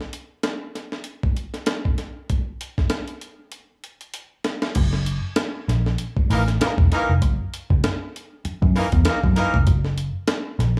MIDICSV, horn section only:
0, 0, Header, 1, 2, 480
1, 0, Start_track
1, 0, Tempo, 616016
1, 1787, Time_signature, 4, 2, 24, 8
1, 8411, End_track
2, 0, Start_track
2, 0, Title_t, "Horn section"
2, 0, Program_c, 0, 61
2, 4916, Note_on_c, 0, 63, 74
2, 4919, Note_on_c, 0, 52, 76
2, 4922, Note_on_c, 0, 58, 73
2, 4922, Note_on_c, 0, 70, 80
2, 4999, Note_off_c, 0, 63, 0
2, 5001, Note_off_c, 0, 52, 0
2, 5003, Note_off_c, 0, 58, 0
2, 5003, Note_off_c, 0, 70, 0
2, 5150, Note_on_c, 0, 52, 77
2, 5153, Note_on_c, 0, 63, 72
2, 5154, Note_on_c, 0, 58, 79
2, 5154, Note_on_c, 0, 70, 86
2, 5235, Note_off_c, 0, 52, 0
2, 5237, Note_off_c, 0, 63, 0
2, 5238, Note_off_c, 0, 58, 0
2, 5238, Note_off_c, 0, 70, 0
2, 5396, Note_on_c, 0, 52, 87
2, 5396, Note_on_c, 0, 58, 94
2, 5396, Note_on_c, 0, 70, 103
2, 5398, Note_on_c, 0, 63, 92
2, 5546, Note_off_c, 0, 52, 0
2, 5546, Note_off_c, 0, 58, 0
2, 5546, Note_off_c, 0, 70, 0
2, 5548, Note_off_c, 0, 63, 0
2, 6825, Note_on_c, 0, 52, 76
2, 6825, Note_on_c, 0, 63, 78
2, 6828, Note_on_c, 0, 58, 79
2, 6828, Note_on_c, 0, 70, 86
2, 6911, Note_off_c, 0, 52, 0
2, 6911, Note_off_c, 0, 63, 0
2, 6913, Note_off_c, 0, 58, 0
2, 6913, Note_off_c, 0, 70, 0
2, 7063, Note_on_c, 0, 58, 82
2, 7063, Note_on_c, 0, 70, 90
2, 7066, Note_on_c, 0, 52, 72
2, 7066, Note_on_c, 0, 63, 79
2, 7149, Note_off_c, 0, 58, 0
2, 7149, Note_off_c, 0, 70, 0
2, 7151, Note_off_c, 0, 52, 0
2, 7151, Note_off_c, 0, 63, 0
2, 7297, Note_on_c, 0, 58, 98
2, 7297, Note_on_c, 0, 70, 106
2, 7300, Note_on_c, 0, 63, 100
2, 7301, Note_on_c, 0, 52, 101
2, 7453, Note_off_c, 0, 58, 0
2, 7453, Note_off_c, 0, 70, 0
2, 7454, Note_off_c, 0, 63, 0
2, 7455, Note_off_c, 0, 52, 0
2, 8411, End_track
0, 0, End_of_file